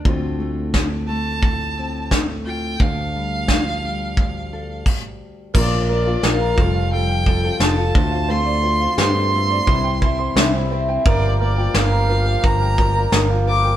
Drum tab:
CC |--------|------x-|x-------|--------|
SD |--o---o-|--o-----|--o---o-|--o---o-|
BD |o-o-o-o-|o-o-o-o-|o--o-o-o|----oo--|

CC |--------|
SD |--o---o-|
BD |o---oo--|